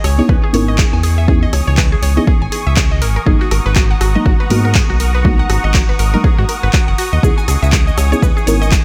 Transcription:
Already playing: E3 B3 C#4 D#4 E4 F#5 G#5 C#6 D#6
0.04 C#2 C#5, cross-stick, open hi-hat
0.14 D#6
0.18 B3 C#4 D#4 E4 G#4 C#5
0.29 C#2 B4, kick
0.44 G#4
0.53 G#1 B3 C#4 D#4 E4 A#4 C#5, open hi-hat
0.68 D#5
0.78 G#4, kick, clap
0.93 E2 G#5
1.03 G#4, open hi-hat
1.18 E5
1.27 B3 C#4 D#4 E4 G#4, kick
1.43 D#5
1.53 C#2 C#5, cross-stick, open hi-hat
1.67 C#2 C#5
1.77 B4, kick, clap
1.92 G#4
2.02 C#2 C#5, open hi-hat
2.17 B3 C#4 D#4 E4 G#4 D#5
2.27 G#4, kick
2.42 G#1 G#5
2.52 G#4, open hi-hat
2.67 C#2 E5
2.76 G#4, kick, clap
2.91 D#5
3.02 G#1 A#4 F#5 A#5, open hi-hat
3.16 A#4
3.26 G#1 F#3 G#3 A#3 B3 D#4 G#4, kick
3.41 F#4
3.51 G#1 A#4, cross-stick, open hi-hat
3.66 G#1 B4
3.75 F#4, kick, clap
3.91 F#5
3.96 F#5
4.01 G#1 F#4, cross-stick, open hi-hat
4.15 F#3 G#3 A#3 B3 D#4 D#5
4.26 G#1 F#4, kick
4.40 B4
4.50 G#2 F#3 G#3 A#3 B3 F#4 A#4, open hi-hat
4.65 A#4
4.75 G#4, kick, clap
4.90 B1 F#4
5.00 A#4, open hi-hat
5.15 B4
5.24 F#3 G#3 A#3 B3 D#4 F#4, kick
5.39 F#5
5.50 G#1 F#4, cross-stick, open hi-hat
5.64 G#1 D#5
5.74 F#4, kick, clap
5.89 B4
5.99 G#1 A#4, open hi-hat
6.13 F#3 G#3 A#3 B3 D#4 A#4
6.24 G#4, kick
6.38 G#2 F#4
6.49 A#4, open hi-hat
6.63 G#1 B4
6.73 F#4, kick, clap
6.88 F#1 F#5
6.98 F#4, open hi-hat
7.13 D#2 D#5
7.22 C#2 B3 C#4 D#4 E4 G#4 G#5, kick, cabasa
7.38 E3 G#5, cabasa
7.48 C#2 G#4, cross-stick, open hi-hat, cabasa
7.62 C#2 E5, cabasa
7.72 G#4, kick, clap, cabasa
7.87 D#5, cabasa
7.97 C#2 C#5, cross-stick, open hi-hat, cabasa
8.12 B3 C#4 D#4 E4 G#4 C#5, cabasa
8.22 C#2 B4, kick, cabasa
8.34 G#4 D#6, cabasa
8.46 G#1 B3 C#4 D#4 E4 A#4 C#5, open hi-hat, cabasa
8.62 D#5, cabasa
8.71 G#4, kick, clap, cabasa

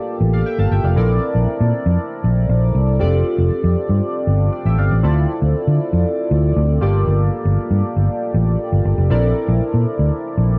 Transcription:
Already playing: A#3 F4 G4 A4 D5
0.20 A1
0.33 D5 F5
0.46 E5 G5
0.58 G1 F5 A5
0.71 G1 E5 G5
0.84 F1 D5 F5
0.96 A#1 C4 E4 A4 A#4 D5
1.35 A#1
1.48 muted fingered electric bass stroke
1.61 A#2
1.86 F2
2.24 A#1
2.49 A#1
2.75 C2
2.99 F1 C4 F4 G4 A4 D5
3.38 F1
3.51 muted fingered electric bass stroke
3.64 F2
3.89 G2
4.27 G1
4.52 D5
4.65 A1 E5 G5
4.78 G1 D5 F5
4.91 A1 D5
5.03 D2 C4 E4 F4 A4 D5
5.42 D2
5.55 muted fingered electric bass stroke
5.67 D3
5.93 F2
6.31 D2
6.56 D2
6.81 G1 A#3 F4 G4 A4 D5
7.07 G1
7.45 G1
7.58 muted fingered electric bass stroke
7.71 G2
7.96 G1
8.34 A1
8.72 G1
8.85 G1
8.98 F1
9.10 A#1 C4 E4 A4 A#4 D5
9.48 A#1
9.61 muted fingered electric bass stroke
9.74 A#2
9.99 D2
10.38 A#1

